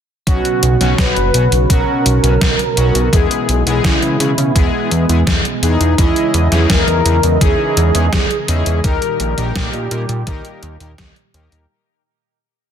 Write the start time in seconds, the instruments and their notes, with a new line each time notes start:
0.27 analog synth bass B1, analog polysynth B2 F#3 B3 C#4 F#4, analog synth pad B2 C#3 F#3 C#4 F#4, kick, closed hi-hat
0.45 closed hi-hat
0.63 analog synth bass B1, closed hi-hat
0.80 analog synth bass B1, analog polysynth B2 F#3 B3 C#4 F#4, snare, closed hi-hat
0.98 analog synth bass B1, analog polysynth B4, kick, snare, closed hi-hat
1.16 analog synth bass F#1, closed hi-hat
1.34 analog synth bass B1, analog polysynth B2 F#3 B3 C#4 F#4, closed hi-hat
1.52 analog synth bass B1, closed hi-hat
1.70 analog synth bass B1, analog polysynth B2 F#3 B3 C#4 F#4 A#4, kick, closed hi-hat
2.06 analog synth bass B1, closed hi-hat
2.23 analog synth bass B1, analog polysynth B2 F#3 B3 C#4 F#4, closed hi-hat
2.41 analog synth bass B1, kick, snare, closed hi-hat
2.59 closed hi-hat
2.77 analog synth bass B1, analog polysynth F#3 B3 C#4 F#4, closed hi-hat
2.95 analog synth bass B1, closed hi-hat
3.13 analog synth bass E2, analog synth pad E3 G#3 B3 G#4, analog polysynth G#3 B3 E4 G#4, kick, closed hi-hat
3.31 closed hi-hat
3.49 analog synth bass B1, closed hi-hat
3.66 analog synth bass B1, analog polysynth G#3 B3 E4 G#4, closed hi-hat
3.84 analog synth bass C#3, analog polysynth E4, kick, snare, closed hi-hat
4.02 analog synth bass C#3, closed hi-hat
4.20 analog synth bass C#3, analog polysynth G#3 B3 E4 G#4, closed hi-hat
4.38 analog synth bass C#3, closed hi-hat
4.56 analog synth bass E2, analog polysynth G#3 B3 E4 G#4, kick, closed hi-hat
4.91 analog synth bass E2, closed hi-hat
5.09 analog synth bass E2, analog polysynth G#3 B3 E4 G#4, closed hi-hat
5.27 analog synth bass E2, kick, snare, closed hi-hat
5.45 closed hi-hat
5.62 analog synth bass E2, analog polysynth E3 G#3 B3 D#4 G#4, closed hi-hat
5.81 analog synth bass E2, closed hi-hat
5.98 analog synth bass E2, analog synth pad C#3 E3 D#5, analog polysynth E3 C#4 E4 G#4 D#5, kick, closed hi-hat
6.16 closed hi-hat
6.34 analog synth bass E2, closed hi-hat
6.52 analog synth bass E2, analog polysynth E3 C#4 D#4 E4 G#4, snare, closed hi-hat
6.70 analog synth bass E2, analog polysynth A#4, kick, snare, closed hi-hat
6.87 analog synth bass E2, closed hi-hat
7.05 analog synth bass E2, analog polysynth E3 C#4 D#4 E4 G#4, closed hi-hat
7.23 analog synth bass E2, closed hi-hat
7.41 analog synth bass E2, analog polysynth E3 C#4 D#4 E4 G#4, kick, closed hi-hat
7.77 analog synth bass E2, closed hi-hat
7.95 analog synth bass E2, analog polysynth E3 C#4 D#4 E4 G#4, closed hi-hat
8.13 analog synth bass E2, kick, snare, closed hi-hat
8.31 closed hi-hat
8.48 analog synth bass E2, analog polysynth C#4 D#4 E4 G#4, closed hi-hat
8.66 analog synth bass E2, closed hi-hat
8.84 analog synth bass D#2, analog synth pad A#2 D#3 G3 G4, analog polysynth D#3 A#3 D#4 G4 A#4, kick, closed hi-hat
9.02 closed hi-hat
9.20 analog synth bass A#1, closed hi-hat
9.38 analog synth bass A#1, analog polysynth D#3 A#3 D#4 G4 A#4, closed hi-hat
9.56 analog synth bass A#2, analog polysynth G4, kick, snare, closed hi-hat
9.73 analog synth bass A#2, closed hi-hat
9.91 analog synth bass A#2, analog polysynth D#3 A#3 D#4 G4 A#4, closed hi-hat
10.09 analog synth bass A#2, closed hi-hat
10.27 analog synth bass D#2, analog polysynth D#3 A#3 D#4 G4 A#4, kick, closed hi-hat
10.45 closed hi-hat
10.63 analog synth bass D#2, closed hi-hat
10.80 analog synth bass D#2, analog polysynth D#3 A#3 D#4 G4 A#4, closed hi-hat
10.98 analog synth bass D#2, kick, snare, closed hi-hat
11.16 closed hi-hat
11.34 analog synth bass D#2, analog polysynth D#3 A#3 D#4 G4 A#4, closed hi-hat
11.52 analog synth bass D#2, closed hi-hat